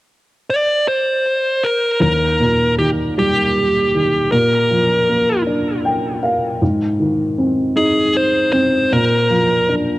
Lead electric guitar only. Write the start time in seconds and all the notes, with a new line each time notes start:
0.50 D5
0.88 C5
1.64 A#4
2.02 A#4
2.79 G4
3.19 G4
4.32 A#4
7.77 G#4
8.17 C5
8.52 C5
8.93 A#4